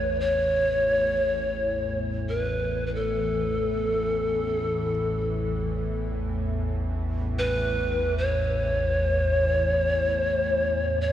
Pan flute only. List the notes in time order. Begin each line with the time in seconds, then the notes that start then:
Already playing: C#5
0.20 C#5
2.29 B4
2.86 B4
2.95 A4
7.38 B4
8.18 C#5
11.01 C#5